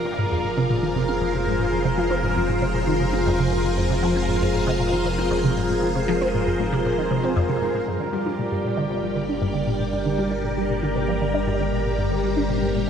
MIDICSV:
0, 0, Header, 1, 5, 480
1, 0, Start_track
1, 0, Tempo, 512821
1, 1610, Time_signature, 4, 2, 24, 8
1, 12073, End_track
2, 0, Start_track
2, 0, Title_t, "Synth texture"
2, 0, Program_c, 0, 99
2, 0, Note_on_c, 0, 70, 83
2, 7366, Note_on_c, 0, 74, 76
2, 7379, Note_off_c, 0, 70, 0
2, 12073, Note_off_c, 0, 74, 0
2, 12073, End_track
3, 0, Start_track
3, 0, Title_t, "String machine"
3, 0, Program_c, 1, 50
3, 0, Note_on_c, 1, 65, 80
3, 0, Note_on_c, 1, 70, 73
3, 0, Note_on_c, 1, 74, 71
3, 64, Note_on_c, 1, 68, 86
3, 672, Note_on_c, 1, 72, 83
3, 959, Note_off_c, 1, 74, 0
3, 1308, Note_off_c, 1, 70, 0
3, 7364, Note_on_c, 1, 55, 84
3, 7370, Note_off_c, 1, 68, 0
3, 7370, Note_off_c, 1, 72, 0
3, 7451, Note_on_c, 1, 67, 87
3, 8310, Note_on_c, 1, 74, 78
3, 8368, Note_on_c, 1, 70, 70
3, 8646, Note_off_c, 1, 65, 0
3, 11307, Note_on_c, 1, 72, 81
3, 11452, Note_off_c, 1, 74, 0
3, 12073, Note_off_c, 1, 55, 0
3, 12073, Note_off_c, 1, 67, 0
3, 12073, Note_off_c, 1, 70, 0
3, 12073, Note_off_c, 1, 72, 0
3, 12073, End_track
4, 0, Start_track
4, 0, Title_t, "Synth arpeggio sound"
4, 0, Program_c, 2, 84
4, 51, Note_on_c, 2, 60, 76
4, 118, Note_off_c, 2, 60, 0
4, 169, Note_on_c, 2, 44, 81
4, 238, Note_off_c, 2, 44, 0
4, 293, Note_on_c, 2, 41, 74
4, 332, Note_off_c, 2, 41, 0
4, 414, Note_on_c, 2, 44, 74
4, 480, Note_off_c, 2, 44, 0
4, 530, Note_on_c, 2, 48, 97
4, 598, Note_off_c, 2, 48, 0
4, 651, Note_on_c, 2, 46, 78
4, 719, Note_off_c, 2, 46, 0
4, 773, Note_on_c, 2, 51, 77
4, 839, Note_off_c, 2, 51, 0
4, 894, Note_on_c, 2, 48, 76
4, 960, Note_off_c, 2, 48, 0
4, 1014, Note_on_c, 2, 60, 75
4, 1080, Note_off_c, 2, 60, 0
4, 1134, Note_on_c, 2, 41, 101
4, 1173, Note_off_c, 2, 41, 0
4, 1253, Note_on_c, 2, 48, 75
4, 1320, Note_off_c, 2, 48, 0
4, 1371, Note_on_c, 2, 44, 75
4, 1438, Note_off_c, 2, 44, 0
4, 1490, Note_on_c, 2, 44, 74
4, 1531, Note_off_c, 2, 44, 0
4, 1609, Note_on_c, 2, 41, 82
4, 1678, Note_off_c, 2, 41, 0
4, 1729, Note_on_c, 2, 48, 80
4, 1770, Note_off_c, 2, 48, 0
4, 1849, Note_on_c, 2, 53, 106
4, 1952, Note_off_c, 2, 53, 0
4, 1968, Note_on_c, 2, 60, 78
4, 2037, Note_off_c, 2, 60, 0
4, 2088, Note_on_c, 2, 44, 85
4, 2157, Note_off_c, 2, 44, 0
4, 2210, Note_on_c, 2, 41, 76
4, 2251, Note_off_c, 2, 41, 0
4, 2329, Note_on_c, 2, 44, 71
4, 2397, Note_off_c, 2, 44, 0
4, 2447, Note_on_c, 2, 48, 97
4, 2517, Note_off_c, 2, 48, 0
4, 2567, Note_on_c, 2, 46, 82
4, 2636, Note_off_c, 2, 46, 0
4, 2687, Note_on_c, 2, 51, 76
4, 2756, Note_off_c, 2, 51, 0
4, 2808, Note_on_c, 2, 48, 76
4, 2877, Note_off_c, 2, 48, 0
4, 2928, Note_on_c, 2, 60, 75
4, 2997, Note_off_c, 2, 60, 0
4, 3049, Note_on_c, 2, 41, 104
4, 3090, Note_off_c, 2, 41, 0
4, 3169, Note_on_c, 2, 48, 78
4, 3238, Note_off_c, 2, 48, 0
4, 3289, Note_on_c, 2, 44, 78
4, 3358, Note_off_c, 2, 44, 0
4, 3411, Note_on_c, 2, 44, 76
4, 3451, Note_off_c, 2, 44, 0
4, 3529, Note_on_c, 2, 41, 79
4, 3598, Note_off_c, 2, 41, 0
4, 3649, Note_on_c, 2, 48, 76
4, 3690, Note_off_c, 2, 48, 0
4, 3769, Note_on_c, 2, 53, 101
4, 3871, Note_off_c, 2, 53, 0
4, 3891, Note_on_c, 2, 60, 75
4, 3959, Note_off_c, 2, 60, 0
4, 4010, Note_on_c, 2, 44, 82
4, 4078, Note_off_c, 2, 44, 0
4, 4133, Note_on_c, 2, 41, 76
4, 4172, Note_off_c, 2, 41, 0
4, 4250, Note_on_c, 2, 44, 76
4, 4318, Note_off_c, 2, 44, 0
4, 4370, Note_on_c, 2, 48, 104
4, 4438, Note_off_c, 2, 48, 0
4, 4489, Note_on_c, 2, 46, 81
4, 4557, Note_off_c, 2, 46, 0
4, 4610, Note_on_c, 2, 51, 72
4, 4678, Note_off_c, 2, 51, 0
4, 4728, Note_on_c, 2, 48, 81
4, 4797, Note_off_c, 2, 48, 0
4, 4849, Note_on_c, 2, 60, 79
4, 4918, Note_off_c, 2, 60, 0
4, 4967, Note_on_c, 2, 41, 101
4, 5009, Note_off_c, 2, 41, 0
4, 5089, Note_on_c, 2, 48, 77
4, 5158, Note_off_c, 2, 48, 0
4, 5208, Note_on_c, 2, 44, 71
4, 5277, Note_off_c, 2, 44, 0
4, 5331, Note_on_c, 2, 44, 76
4, 5371, Note_off_c, 2, 44, 0
4, 5451, Note_on_c, 2, 41, 82
4, 5519, Note_off_c, 2, 41, 0
4, 5573, Note_on_c, 2, 48, 78
4, 5612, Note_off_c, 2, 48, 0
4, 5692, Note_on_c, 2, 53, 104
4, 5793, Note_off_c, 2, 53, 0
4, 5814, Note_on_c, 2, 60, 78
4, 5880, Note_off_c, 2, 60, 0
4, 5934, Note_on_c, 2, 44, 82
4, 6000, Note_off_c, 2, 44, 0
4, 6053, Note_on_c, 2, 41, 81
4, 6092, Note_off_c, 2, 41, 0
4, 6173, Note_on_c, 2, 44, 74
4, 6240, Note_off_c, 2, 44, 0
4, 6293, Note_on_c, 2, 48, 102
4, 6360, Note_off_c, 2, 48, 0
4, 6415, Note_on_c, 2, 46, 82
4, 6480, Note_off_c, 2, 46, 0
4, 6533, Note_on_c, 2, 51, 75
4, 6599, Note_off_c, 2, 51, 0
4, 6652, Note_on_c, 2, 48, 78
4, 6719, Note_off_c, 2, 48, 0
4, 6772, Note_on_c, 2, 60, 78
4, 6839, Note_off_c, 2, 60, 0
4, 6890, Note_on_c, 2, 41, 108
4, 6931, Note_off_c, 2, 41, 0
4, 7010, Note_on_c, 2, 48, 80
4, 7078, Note_off_c, 2, 48, 0
4, 7130, Note_on_c, 2, 44, 76
4, 7198, Note_off_c, 2, 44, 0
4, 7248, Note_on_c, 2, 44, 76
4, 7290, Note_off_c, 2, 44, 0
4, 7371, Note_on_c, 2, 43, 77
4, 7438, Note_off_c, 2, 43, 0
4, 7489, Note_on_c, 2, 50, 75
4, 7530, Note_off_c, 2, 50, 0
4, 7609, Note_on_c, 2, 55, 97
4, 7712, Note_off_c, 2, 55, 0
4, 7732, Note_on_c, 2, 62, 74
4, 7799, Note_off_c, 2, 62, 0
4, 7851, Note_on_c, 2, 46, 79
4, 7918, Note_off_c, 2, 46, 0
4, 7969, Note_on_c, 2, 43, 75
4, 8010, Note_off_c, 2, 43, 0
4, 8091, Note_on_c, 2, 46, 68
4, 8158, Note_off_c, 2, 46, 0
4, 8211, Note_on_c, 2, 50, 94
4, 8279, Note_off_c, 2, 50, 0
4, 8329, Note_on_c, 2, 48, 76
4, 8398, Note_off_c, 2, 48, 0
4, 8451, Note_on_c, 2, 53, 72
4, 8518, Note_off_c, 2, 53, 0
4, 8569, Note_on_c, 2, 50, 75
4, 8637, Note_off_c, 2, 50, 0
4, 8692, Note_on_c, 2, 62, 70
4, 8759, Note_off_c, 2, 62, 0
4, 8812, Note_on_c, 2, 43, 93
4, 8852, Note_off_c, 2, 43, 0
4, 8929, Note_on_c, 2, 50, 73
4, 8997, Note_off_c, 2, 50, 0
4, 9049, Note_on_c, 2, 46, 72
4, 9118, Note_off_c, 2, 46, 0
4, 9169, Note_on_c, 2, 46, 71
4, 9210, Note_off_c, 2, 46, 0
4, 9289, Note_on_c, 2, 43, 77
4, 9358, Note_off_c, 2, 43, 0
4, 9410, Note_on_c, 2, 50, 74
4, 9451, Note_off_c, 2, 50, 0
4, 9531, Note_on_c, 2, 55, 96
4, 9632, Note_off_c, 2, 55, 0
4, 9651, Note_on_c, 2, 62, 73
4, 9718, Note_off_c, 2, 62, 0
4, 9769, Note_on_c, 2, 46, 77
4, 9838, Note_off_c, 2, 46, 0
4, 9890, Note_on_c, 2, 43, 73
4, 9931, Note_off_c, 2, 43, 0
4, 10013, Note_on_c, 2, 46, 71
4, 10080, Note_off_c, 2, 46, 0
4, 10131, Note_on_c, 2, 50, 96
4, 10198, Note_off_c, 2, 50, 0
4, 10253, Note_on_c, 2, 48, 77
4, 10319, Note_off_c, 2, 48, 0
4, 10374, Note_on_c, 2, 53, 76
4, 10440, Note_off_c, 2, 53, 0
4, 10493, Note_on_c, 2, 50, 76
4, 10560, Note_off_c, 2, 50, 0
4, 10613, Note_on_c, 2, 62, 73
4, 10679, Note_off_c, 2, 62, 0
4, 10734, Note_on_c, 2, 43, 93
4, 10773, Note_off_c, 2, 43, 0
4, 10855, Note_on_c, 2, 50, 72
4, 10920, Note_off_c, 2, 50, 0
4, 10973, Note_on_c, 2, 46, 73
4, 11039, Note_off_c, 2, 46, 0
4, 11093, Note_on_c, 2, 46, 75
4, 11132, Note_off_c, 2, 46, 0
4, 11213, Note_on_c, 2, 43, 81
4, 11280, Note_off_c, 2, 43, 0
4, 11334, Note_on_c, 2, 50, 76
4, 11373, Note_off_c, 2, 50, 0
4, 11453, Note_on_c, 2, 55, 102
4, 11553, Note_off_c, 2, 55, 0
4, 11573, Note_on_c, 2, 62, 77
4, 11639, Note_off_c, 2, 62, 0
4, 11694, Note_on_c, 2, 46, 83
4, 11760, Note_off_c, 2, 46, 0
4, 11815, Note_on_c, 2, 43, 72
4, 11853, Note_off_c, 2, 43, 0
4, 11934, Note_on_c, 2, 46, 72
4, 12000, Note_off_c, 2, 46, 0
4, 12073, End_track
5, 0, Start_track
5, 0, Title_t, "Analog synth bass"
5, 0, Program_c, 3, 38
5, 0, Note_on_c, 3, 29, 88
5, 7346, Note_off_c, 3, 29, 0
5, 7367, Note_on_c, 3, 31, 88
5, 12073, Note_off_c, 3, 31, 0
5, 12073, End_track
0, 0, End_of_file